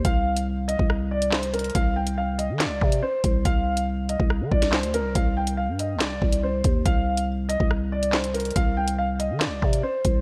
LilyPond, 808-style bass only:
\new Staff \with { instrumentName = "808-style bass" } { \clef bass \time 4/4 \key c \minor \tempo 4 = 141 c,4.~ c,16 c,2~ c,16 | c,4.~ c,16 ees16. c,16. c8 r8 c,8 | c,4.~ c,16 c,8 ees16 c,8. d,16. c,16. | c,4~ c,16 g,8~ g,32 c,8~ c,32 c,4 ees,8 |
c,4.~ c,16 c,2~ c,16 | c,4.~ c,16 ees16. c,16. c8 r8 c,8 | }